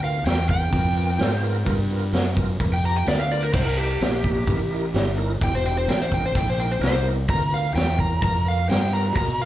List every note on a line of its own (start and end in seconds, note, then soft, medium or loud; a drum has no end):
0.00 0.24 D2 medium
0.00 0.16 B3 medium
0.00 0.17 F4 medium
0.00 0.17 A#4 medium
0.00 0.26 F5 medium
0.25 0.71 E2 medium
0.25 0.40 B3 medium
0.25 0.41 F4 medium
0.25 0.41 A#4 medium
0.25 0.49 G5 medium
0.25 snare loud
0.25 open hi-hat medium
0.49 0.64 B3 medium
0.49 0.64 F4 medium
0.49 0.64 A#4 medium
0.49 1.41 G5 loud
0.49 kick medium
0.72 1.18 F2 medium
0.72 0.88 B3 medium
0.72 0.87 F4 medium
0.72 0.88 A#4 medium
0.72 kick loud
0.72 open hi-hat medium
0.96 1.10 B3 medium
0.96 1.11 F4 medium
0.96 1.11 A#4 medium
1.18 1.65 G#2 loud
1.18 1.33 B3 loud
1.18 1.34 F4 loud
1.18 1.34 A#4 loud
1.18 snare loud
1.18 open hi-hat medium
1.43 1.57 B3 loud
1.43 1.57 F4 loud
1.43 1.58 A#4 loud
1.65 2.12 G2 medium
1.65 1.80 B3 loud
1.65 1.80 F4 loud
1.65 1.81 A#4 loud
1.65 kick loud
1.65 open hi-hat medium
1.90 2.04 B3 medium
1.90 2.05 F4 medium
1.90 2.05 A#4 medium
2.11 2.59 F#2 medium
2.11 2.27 B3 medium
2.11 2.27 F4 medium
2.11 2.28 A#4 medium
2.11 snare loud
2.11 open hi-hat medium
2.36 2.51 B3 medium
2.36 2.51 F4 medium
2.36 2.52 A#4 medium
2.36 kick medium
2.59 3.06 F2 medium
2.59 2.74 B3 medium
2.59 2.74 F4 medium
2.59 2.75 A#4 medium
2.59 kick loud
2.59 open hi-hat medium
2.74 2.84 G5 loud
2.83 2.98 B3 medium
2.83 2.98 F4 medium
2.83 2.98 G4 medium
2.83 2.96 A#5 medium
2.96 3.07 G5 medium
3.06 3.53 D2 medium
3.06 3.21 B3 medium
3.06 3.22 F4 medium
3.06 3.22 A#4 loud
3.06 3.19 D5 medium
3.06 snare loud
3.06 open hi-hat medium
3.19 3.30 F5 medium
3.31 3.45 B3 loud
3.31 3.45 F4 medium
3.31 3.46 A#4 loud
3.31 3.42 D5 medium
3.43 3.54 A#4 medium
3.53 3.99 C2 medium
3.53 3.69 D#4 medium
3.53 3.69 E4 medium
3.53 3.69 A#4 loud
3.53 3.65 C5 medium
3.53 kick loud
3.53 crash loud
3.65 3.77 A#4 medium
3.77 3.93 D#4 medium
3.77 3.93 E4 medium
3.77 5.14 G4 medium
3.77 3.94 A#4 medium
4.01 4.46 A#1 medium
4.01 4.16 D#4 medium
4.01 4.16 E4 medium
4.01 4.16 A#4 medium
4.01 snare loud
4.01 open hi-hat medium
4.24 4.39 D#4 medium
4.24 4.39 E4 medium
4.24 4.39 A#4 medium
4.24 kick medium
4.47 4.93 A1 medium
4.47 4.62 D#4 medium
4.47 4.62 E4 medium
4.47 4.63 A#4 medium
4.47 kick loud
4.47 open hi-hat medium
4.71 4.85 D#4 medium
4.71 4.86 E4 medium
4.71 4.86 A#4 loud
4.94 5.40 G1 loud
4.94 5.09 D#4 loud
4.94 5.09 E4 loud
4.94 5.09 G4 loud
4.94 snare loud
4.94 open hi-hat medium
5.17 5.32 D#4 loud
5.17 5.32 E4 loud
5.17 5.32 A#4 loud
5.40 5.87 E1 medium
5.40 5.55 D#4 medium
5.40 5.56 E4 medium
5.40 5.56 G4 loud
5.40 5.54 G5 loud
5.40 kick loud
5.40 open hi-hat medium
5.55 5.65 C5 medium
5.64 5.79 D#4 medium
5.64 5.79 E4 medium
5.64 5.79 G4 medium
5.64 5.77 G5 medium
5.77 5.88 C5 medium
5.86 6.34 A1 medium
5.86 6.01 D#4 medium
5.86 6.02 E4 medium
5.86 6.02 A#4 medium
5.86 6.00 G5 medium
5.86 open hi-hat medium
5.90 snare loud
6.02 6.12 C5 medium
6.11 6.26 D#4 medium
6.11 6.27 E4 medium
6.11 6.27 A#4 medium
6.11 6.24 G5 loud
6.11 kick medium
6.26 6.36 C5 loud
6.34 6.80 A#1 medium
6.34 6.49 D#4 medium
6.34 6.50 E4 medium
6.34 6.50 A4 medium
6.34 6.47 G5 medium
6.34 kick loud
6.34 open hi-hat medium
6.50 6.60 C5 loud
6.58 6.73 D#4 medium
6.58 6.73 E4 medium
6.58 6.73 A#4 medium
6.58 6.70 G5 medium
6.72 6.82 C5 medium
6.80 7.27 C2 loud
6.80 6.95 D#4 medium
6.80 6.96 E4 medium
6.80 6.96 A#4 loud
6.80 snare loud
6.80 open hi-hat medium
6.84 7.06 C5 loud
7.02 7.18 D#4 loud
7.02 7.19 E4 medium
7.02 7.18 A#4 loud
7.28 7.74 D2 medium
7.28 7.43 B3 medium
7.28 7.43 F4 medium
7.28 7.43 A#4 loud
7.28 7.52 A#5 loud
7.28 kick loud
7.28 open hi-hat medium
7.50 7.66 B3 medium
7.50 7.66 F4 medium
7.50 7.67 A#4 medium
7.50 7.75 F5 medium
7.72 8.21 E2 loud
7.72 7.88 B3 medium
7.72 7.89 F4 medium
7.72 7.89 A#4 medium
7.72 7.98 G5 loud
7.72 open hi-hat medium
7.77 snare loud
7.96 8.12 B3 medium
7.96 8.12 F4 medium
7.96 8.13 A#4 medium
7.96 kick medium
8.00 8.22 A#5 medium
8.22 8.68 F2 medium
8.22 8.36 B3 medium
8.22 8.36 F4 medium
8.22 8.37 A#4 medium
8.22 8.46 A#5 loud
8.22 kick loud
8.22 open hi-hat medium
8.44 8.59 B3 medium
8.44 8.60 F4 medium
8.44 8.60 A#4 medium
8.44 8.70 F5 medium
8.68 9.14 G2 loud
8.68 8.83 B3 medium
8.68 8.83 F4 medium
8.68 8.83 A#4 loud
8.68 8.92 G5 loud
8.68 snare loud
8.68 open hi-hat medium
8.93 9.07 B3 loud
8.93 9.07 F4 medium
8.93 9.07 A#4 loud
8.93 9.16 A#5 medium
9.16 9.45 B2 medium
9.16 9.30 B3 medium
9.16 9.30 F4 medium
9.16 9.31 A#4 loud
9.16 9.39 A#5 loud
9.16 kick loud
9.16 open hi-hat medium
9.39 9.45 B3 medium
9.39 9.45 F4 medium
9.39 9.45 A#4 medium
9.39 9.45 F5 medium